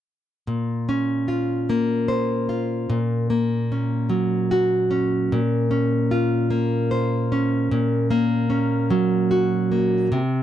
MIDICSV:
0, 0, Header, 1, 2, 480
1, 0, Start_track
1, 0, Key_signature, -5, "minor"
1, 0, Tempo, 802139
1, 285, Time_signature, 6, 3, 24, 8
1, 6241, End_track
2, 0, Start_track
2, 0, Title_t, "Nylon-string guitar"
2, 0, Program_c, 0, 24
2, 283, Note_on_c, 0, 46, 46
2, 531, Note_on_c, 0, 61, 37
2, 766, Note_on_c, 0, 65, 38
2, 1015, Note_on_c, 0, 58, 39
2, 1247, Note_on_c, 0, 72, 44
2, 1483, Note_off_c, 0, 65, 0
2, 1490, Note_on_c, 0, 65, 35
2, 1726, Note_off_c, 0, 46, 0
2, 1733, Note_on_c, 0, 46, 52
2, 1775, Note_off_c, 0, 72, 0
2, 1777, Note_off_c, 0, 65, 0
2, 1972, Note_off_c, 0, 58, 0
2, 1975, Note_on_c, 0, 58, 44
2, 2222, Note_off_c, 0, 61, 0
2, 2225, Note_on_c, 0, 61, 40
2, 2451, Note_on_c, 0, 54, 47
2, 2700, Note_on_c, 0, 66, 46
2, 2934, Note_off_c, 0, 61, 0
2, 2936, Note_on_c, 0, 61, 38
2, 3170, Note_off_c, 0, 46, 0
2, 3185, Note_on_c, 0, 46, 64
2, 3217, Note_off_c, 0, 54, 0
2, 3222, Note_off_c, 0, 66, 0
2, 3413, Note_off_c, 0, 61, 0
2, 3415, Note_on_c, 0, 61, 46
2, 3658, Note_on_c, 0, 65, 44
2, 3890, Note_off_c, 0, 58, 0
2, 3892, Note_on_c, 0, 58, 49
2, 4135, Note_on_c, 0, 72, 44
2, 4377, Note_off_c, 0, 61, 0
2, 4380, Note_on_c, 0, 61, 46
2, 4609, Note_off_c, 0, 46, 0
2, 4616, Note_on_c, 0, 46, 60
2, 4659, Note_off_c, 0, 72, 0
2, 4660, Note_off_c, 0, 65, 0
2, 4847, Note_off_c, 0, 58, 0
2, 4850, Note_on_c, 0, 58, 48
2, 5082, Note_off_c, 0, 61, 0
2, 5085, Note_on_c, 0, 61, 44
2, 5329, Note_on_c, 0, 54, 51
2, 5570, Note_on_c, 0, 66, 51
2, 5806, Note_off_c, 0, 58, 0
2, 5814, Note_on_c, 0, 58, 42
2, 6045, Note_off_c, 0, 54, 0
2, 6048, Note_off_c, 0, 46, 0
2, 6054, Note_on_c, 0, 48, 66
2, 6091, Note_off_c, 0, 61, 0
2, 6094, Note_off_c, 0, 66, 0
2, 6096, Note_off_c, 0, 58, 0
2, 6241, Note_off_c, 0, 48, 0
2, 6241, End_track
0, 0, End_of_file